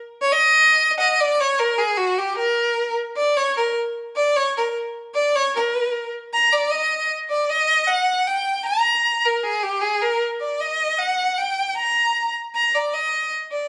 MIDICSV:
0, 0, Header, 1, 2, 480
1, 0, Start_track
1, 0, Tempo, 392670
1, 996, Time_signature, 4, 2, 24, 8
1, 8672, Tempo, 388853
1, 16804, End_track
2, 0, Start_track
2, 0, Title_t, "Violin"
2, 0, Program_c, 0, 40
2, 266, Note_on_c, 0, 73, 96
2, 394, Note_on_c, 0, 75, 109
2, 413, Note_off_c, 0, 73, 0
2, 1117, Note_off_c, 0, 75, 0
2, 1194, Note_on_c, 0, 78, 76
2, 1224, Note_on_c, 0, 75, 92
2, 1242, Note_off_c, 0, 78, 0
2, 1467, Note_on_c, 0, 74, 98
2, 1485, Note_off_c, 0, 75, 0
2, 1714, Note_on_c, 0, 73, 89
2, 1732, Note_off_c, 0, 74, 0
2, 1945, Note_on_c, 0, 70, 90
2, 1964, Note_off_c, 0, 73, 0
2, 2183, Note_on_c, 0, 68, 89
2, 2202, Note_off_c, 0, 70, 0
2, 2414, Note_on_c, 0, 66, 90
2, 2432, Note_off_c, 0, 68, 0
2, 2668, Note_on_c, 0, 67, 89
2, 2687, Note_off_c, 0, 66, 0
2, 2897, Note_off_c, 0, 67, 0
2, 2905, Note_on_c, 0, 70, 91
2, 3586, Note_off_c, 0, 70, 0
2, 3870, Note_on_c, 0, 74, 92
2, 4116, Note_on_c, 0, 73, 89
2, 4134, Note_off_c, 0, 74, 0
2, 4352, Note_off_c, 0, 73, 0
2, 4360, Note_on_c, 0, 70, 77
2, 4585, Note_off_c, 0, 70, 0
2, 5091, Note_on_c, 0, 74, 94
2, 5336, Note_on_c, 0, 73, 94
2, 5354, Note_off_c, 0, 74, 0
2, 5569, Note_off_c, 0, 73, 0
2, 5588, Note_on_c, 0, 70, 69
2, 5799, Note_off_c, 0, 70, 0
2, 6292, Note_on_c, 0, 74, 93
2, 6548, Note_on_c, 0, 73, 97
2, 6566, Note_off_c, 0, 74, 0
2, 6774, Note_off_c, 0, 73, 0
2, 6788, Note_on_c, 0, 70, 75
2, 7443, Note_off_c, 0, 70, 0
2, 7747, Note_on_c, 0, 82, 103
2, 7977, Note_on_c, 0, 74, 93
2, 7995, Note_off_c, 0, 82, 0
2, 8204, Note_on_c, 0, 75, 98
2, 8222, Note_off_c, 0, 74, 0
2, 8678, Note_off_c, 0, 75, 0
2, 8922, Note_on_c, 0, 74, 84
2, 9164, Note_on_c, 0, 75, 99
2, 9182, Note_off_c, 0, 74, 0
2, 9636, Note_on_c, 0, 78, 92
2, 9654, Note_off_c, 0, 75, 0
2, 10123, Note_on_c, 0, 79, 90
2, 10142, Note_off_c, 0, 78, 0
2, 10596, Note_off_c, 0, 79, 0
2, 10604, Note_on_c, 0, 82, 94
2, 11333, Note_on_c, 0, 70, 79
2, 11352, Note_off_c, 0, 82, 0
2, 11503, Note_off_c, 0, 70, 0
2, 11503, Note_on_c, 0, 70, 61
2, 11564, Note_on_c, 0, 68, 82
2, 11582, Note_off_c, 0, 70, 0
2, 11802, Note_on_c, 0, 67, 76
2, 11820, Note_off_c, 0, 68, 0
2, 12028, Note_on_c, 0, 68, 79
2, 12046, Note_off_c, 0, 67, 0
2, 12280, Note_on_c, 0, 70, 80
2, 12298, Note_off_c, 0, 68, 0
2, 12522, Note_off_c, 0, 70, 0
2, 12762, Note_on_c, 0, 74, 77
2, 13004, Note_on_c, 0, 75, 88
2, 13022, Note_off_c, 0, 74, 0
2, 13478, Note_on_c, 0, 78, 88
2, 13496, Note_off_c, 0, 75, 0
2, 13962, Note_on_c, 0, 79, 88
2, 13981, Note_off_c, 0, 78, 0
2, 14442, Note_off_c, 0, 79, 0
2, 14448, Note_on_c, 0, 82, 96
2, 15114, Note_off_c, 0, 82, 0
2, 15411, Note_on_c, 0, 82, 93
2, 15652, Note_on_c, 0, 74, 82
2, 15670, Note_off_c, 0, 82, 0
2, 15886, Note_on_c, 0, 75, 87
2, 15905, Note_off_c, 0, 74, 0
2, 16360, Note_off_c, 0, 75, 0
2, 16601, Note_on_c, 0, 74, 70
2, 16804, Note_off_c, 0, 74, 0
2, 16804, End_track
0, 0, End_of_file